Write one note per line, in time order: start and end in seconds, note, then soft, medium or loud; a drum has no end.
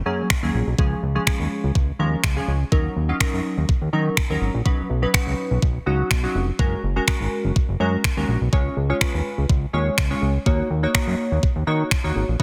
0.06 0.22 F#2 loud
0.06 0.28 F#3 medium
0.06 0.28 A#3 medium
0.06 0.28 C#4 medium
0.06 0.28 G#4 medium
0.30 finger snap loud
0.30 kick loud
0.43 0.51 D#2 medium
0.43 0.64 F#3 medium
0.43 0.65 A#3 medium
0.43 0.65 C#4 medium
0.43 0.65 G#4 medium
0.54 0.63 A#1 medium
0.67 0.75 B1 medium
0.78 0.95 C#2 loud
0.78 1.00 F3 medium
0.78 1.00 G#3 medium
0.78 1.00 C#4 medium
0.78 1.01 G#4 medium
0.78 kick loud
1.03 1.19 C#2 medium
1.15 1.22 F3 medium
1.15 1.22 G#3 medium
1.15 1.22 C#4 medium
1.15 1.22 G#4 medium
1.27 1.70 F3 medium
1.27 1.71 G#3 medium
1.27 1.71 C#4 medium
1.27 1.71 G#4 medium
1.27 finger snap loud
1.27 kick loud
1.40 1.47 D#2 medium
1.64 1.72 C#2 medium
1.75 1.92 C#2 medium
1.75 kick loud
1.99 2.16 D#2 medium
1.99 2.21 F3 medium
1.99 2.21 G#3 medium
1.99 2.21 C#4 medium
1.99 2.21 A#4 medium
2.24 2.40 C#2 medium
2.24 finger snap loud
2.24 kick loud
2.36 2.58 F3 medium
2.36 2.58 G#3 medium
2.36 2.58 C#4 medium
2.36 2.58 G#4 medium
2.48 2.64 C#2 medium
2.72 2.89 D#2 loud
2.72 2.94 F#3 medium
2.72 2.94 C#4 medium
2.72 2.94 D#4 medium
2.72 2.94 A#4 medium
2.72 kick loud
2.96 3.13 D#2 medium
3.09 3.16 F#3 medium
3.09 3.16 C#4 medium
3.09 3.16 D#4 medium
3.09 3.16 F4 medium
3.20 3.64 F#3 medium
3.20 3.64 C#4 medium
3.20 3.64 D#4 medium
3.20 3.64 A#4 medium
3.20 finger snap loud
3.20 kick loud
3.33 3.41 F#2 medium
3.57 3.65 D#2 medium
3.69 kick loud
3.82 3.89 D#2 medium
3.93 4.09 D#3 loud
3.93 4.15 F#3 medium
3.93 4.15 C#4 medium
3.93 4.15 D#4 medium
3.93 4.15 A#4 medium
4.17 finger snap loud
4.17 kick loud
4.30 4.38 D#2 medium
4.30 4.52 F#3 medium
4.30 4.52 C#4 medium
4.30 4.52 D#4 medium
4.30 4.52 A#4 medium
4.41 4.50 G#1 medium
4.54 4.62 A#1 medium
4.65 4.82 B1 loud
4.65 4.87 F#3 medium
4.65 4.87 C#4 medium
4.65 4.87 D#4 medium
4.65 4.88 B4 medium
4.65 kick loud
4.90 5.06 B1 medium
5.02 5.09 F#3 medium
5.02 5.09 C#4 medium
5.02 5.09 D#4 medium
5.02 5.09 B4 medium
5.14 5.57 F#3 medium
5.14 5.58 C#4 medium
5.14 5.58 D#4 medium
5.14 5.58 B4 medium
5.14 finger snap loud
5.14 kick loud
5.27 5.35 C#2 medium
5.51 5.59 B1 medium
5.62 5.79 B1 medium
5.62 kick loud
5.86 6.03 C#2 loud
5.86 6.08 F#3 medium
5.86 6.08 C#4 medium
5.86 6.08 D#4 medium
5.86 6.08 F#4 medium
6.11 6.27 B1 loud
6.11 finger snap loud
6.11 kick loud
6.23 6.45 F#3 medium
6.23 6.45 C#4 medium
6.23 6.45 D#4 medium
6.23 6.45 F#4 medium
6.35 6.51 F1 medium
6.59 6.76 F#1 loud
6.59 6.81 G#3 medium
6.59 6.81 C#4 medium
6.59 6.81 F#4 medium
6.59 6.81 A#4 medium
6.59 kick loud
6.83 7.00 F#1 medium
6.96 7.03 G#3 medium
6.96 7.03 C#4 medium
6.96 7.03 F#4 medium
6.96 7.03 A#4 medium
7.07 7.51 G#3 medium
7.07 7.51 C#4 medium
7.07 7.51 F#4 medium
7.07 7.51 A#4 medium
7.07 finger snap loud
7.07 kick loud
7.20 7.28 G#1 medium
7.44 7.52 F#1 medium
7.56 kick loud
7.69 7.76 F#1 loud
7.80 7.97 F#2 loud
7.80 8.02 G#3 medium
7.80 8.02 C#4 medium
7.80 8.02 F#4 medium
7.80 8.02 A#4 medium
8.04 finger snap loud
8.04 kick loud
8.17 8.25 D#2 medium
8.17 8.39 G#3 medium
8.17 8.39 C#4 medium
8.17 8.39 F#4 medium
8.17 8.39 A#4 medium
8.28 8.37 A#1 loud
8.41 8.49 B1 medium
8.53 8.69 C#2 loud
8.53 8.75 G#3 medium
8.53 8.75 C#4 medium
8.53 8.75 F4 medium
8.53 8.75 C#5 medium
8.53 kick loud
8.77 8.93 C#2 medium
8.90 8.96 G#3 medium
8.90 8.97 C#4 medium
8.90 8.97 F4 medium
8.90 8.97 C#5 medium
9.01 9.45 G#3 medium
9.01 9.45 C#4 medium
9.01 9.45 F4 medium
9.01 9.45 B4 medium
9.01 finger snap loud
9.01 kick loud
9.14 9.22 D#2 medium
9.38 9.46 C#2 medium
9.49 9.66 C#2 medium
9.49 kick loud
9.73 9.90 D#2 medium
9.73 9.95 G#3 medium
9.73 9.95 C#4 medium
9.73 9.95 F4 medium
9.73 9.96 C#5 medium
9.98 10.14 C#2 medium
9.98 finger snap loud
9.98 kick loud
10.10 10.32 G#3 medium
10.10 10.32 C#4 medium
10.10 10.32 F4 medium
10.10 10.32 C#5 medium
10.22 10.38 C#2 medium
10.46 10.63 D#2 loud
10.46 10.68 A#3 medium
10.46 10.68 D#4 medium
10.46 10.68 F#4 medium
10.46 10.68 C#5 medium
10.46 kick loud
10.70 10.87 D#2 medium
10.83 10.90 A#3 medium
10.83 10.90 D#4 medium
10.83 10.90 F#4 medium
10.83 10.90 C#5 medium
10.94 11.38 A#3 medium
10.94 11.38 D#4 medium
10.94 11.38 F#4 medium
10.94 11.38 C#5 medium
10.94 finger snap loud
10.94 kick loud
11.07 11.15 F#2 loud
11.32 11.39 D#2 medium
11.43 kick loud
11.56 11.64 D#2 loud
11.67 11.84 D#3 loud
11.67 11.89 A#3 medium
11.67 11.89 D#4 medium
11.67 11.89 F#4 medium
11.67 11.89 C#5 medium
11.91 finger snap loud
11.91 kick loud
12.04 12.12 D#2 medium
12.04 12.26 A#3 medium
12.04 12.26 D#4 medium
12.04 12.26 F#4 medium
12.04 12.26 C#5 medium
12.16 12.24 G#1 medium
12.28 12.36 A#1 medium
12.39 12.43 B1 loud
12.39 12.43 B3 medium
12.39 12.43 D#4 medium
12.39 12.43 F#4 medium
12.39 kick loud